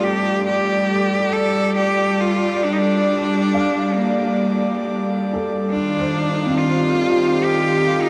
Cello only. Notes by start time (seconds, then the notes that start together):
0.04 G4
0.47 G4
1.33 A4
1.77 G4
2.21 F4
2.64 D4
2.73 D#4
2.78 D4
3.97 A#3
5.70 D4
6.58 F4
7.44 G4
8.02 D#4